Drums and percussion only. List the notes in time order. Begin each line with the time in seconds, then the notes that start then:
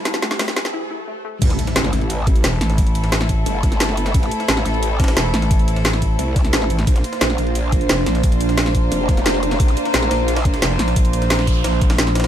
0.05 snare, closed hi-hat, ride
0.14 snare, closed hi-hat, ride
0.22 snare, closed hi-hat, ride
0.31 snare, closed hi-hat
0.39 snare, closed hi-hat, open hi-hat
0.48 snare
0.56 snare, closed hi-hat, ride
0.65 snare
1.42 kick, closed hi-hat, ride, crash
1.50 snare, closed hi-hat
1.59 closed hi-hat, ride
1.67 snare, closed hi-hat
1.76 snare, closed hi-hat, ride
1.84 snare
1.93 snare, closed hi-hat, ride
2.01 ride
2.10 closed hi-hat, ride
2.27 kick, closed hi-hat, ride
2.36 closed hi-hat
2.44 snare, closed hi-hat, ride
2.53 snare
2.61 snare, closed hi-hat, ride
2.70 snare, closed hi-hat
2.78 kick, closed hi-hat, ride
2.87 closed hi-hat, ride
2.95 closed hi-hat, ride
3.04 snare, closed hi-hat
3.12 snare, closed hi-hat, open hi-hat
3.21 snare
3.29 kick, closed hi-hat, ride
3.46 closed hi-hat, ride
3.63 kick, snare, closed hi-hat, ride
3.72 snare, closed hi-hat
3.80 snare, closed hi-hat, ride
3.89 snare
3.97 closed hi-hat, ride
4.06 snare, closed hi-hat
4.14 kick, closed hi-hat, ride
4.23 snare, closed hi-hat
4.31 closed hi-hat, ride
4.40 snare, closed hi-hat
4.48 snare, closed hi-hat, ride
4.57 snare
4.66 snare, closed hi-hat, ride
4.74 ride
4.83 closed hi-hat, ride
5.00 kick, snare, closed hi-hat, ride
5.04 snare, ride
5.08 snare, closed hi-hat, ride
5.17 snare, closed hi-hat, ride
5.25 snare
5.34 snare, closed hi-hat, ride
5.42 snare, closed hi-hat
5.51 kick, closed hi-hat, ride
5.59 closed hi-hat, ride
5.68 closed hi-hat, ride
5.76 snare, closed hi-hat
5.85 snare, closed hi-hat, open hi-hat
5.93 snare
6.02 kick, closed hi-hat, ride
6.19 closed hi-hat, ride
6.36 kick, snare, closed hi-hat, ride
6.45 snare, closed hi-hat
6.53 snare, closed hi-hat, ride
6.62 snare
6.70 closed hi-hat, ride
6.79 snare, closed hi-hat
6.87 kick, closed hi-hat, ride
6.96 snare, closed hi-hat
7.04 closed hi-hat, ride
7.13 snare, closed hi-hat
7.21 snare, closed hi-hat, ride
7.30 snare
7.38 snare, closed hi-hat, ride
7.47 ride
7.55 closed hi-hat, ride
7.72 kick, closed hi-hat, ride
7.81 closed hi-hat
7.89 snare, closed hi-hat, ride
7.98 snare
8.06 snare, closed hi-hat, ride
8.15 snare, closed hi-hat
8.23 kick, closed hi-hat, ride
8.32 closed hi-hat, ride
8.40 closed hi-hat, ride
8.49 snare, closed hi-hat
8.58 snare, closed hi-hat, open hi-hat
8.66 snare
8.75 kick, closed hi-hat, ride
8.92 closed hi-hat, ride
9.09 kick, snare, closed hi-hat, ride
9.17 snare, closed hi-hat
9.26 snare, closed hi-hat, ride
9.34 snare
9.43 closed hi-hat, ride
9.51 snare, closed hi-hat
9.60 kick, closed hi-hat, ride
9.68 snare, closed hi-hat
9.77 closed hi-hat, ride
9.85 snare, closed hi-hat
9.94 snare, closed hi-hat, ride
10.03 snare
10.11 snare, closed hi-hat, ride
10.28 snare, closed hi-hat, ride
10.37 snare, ride
10.45 kick, closed hi-hat
10.54 snare, closed hi-hat, ride
10.62 snare, closed hi-hat, ride
10.71 snare
10.79 snare, closed hi-hat, ride
10.88 snare, closed hi-hat
10.96 kick, closed hi-hat, ride
11.05 closed hi-hat, ride
11.13 closed hi-hat, ride
11.22 snare, closed hi-hat
11.30 snare, closed hi-hat, open hi-hat
11.39 snare
11.47 kick, closed hi-hat, ride
11.64 snare, closed hi-hat, ride
11.73 snare
11.81 kick, closed hi-hat, ride
11.90 snare, closed hi-hat, ride
11.98 snare, closed hi-hat
12.07 snare, ride
12.15 snare, closed hi-hat, ride
12.20 snare, ride
12.24 snare, closed hi-hat, ride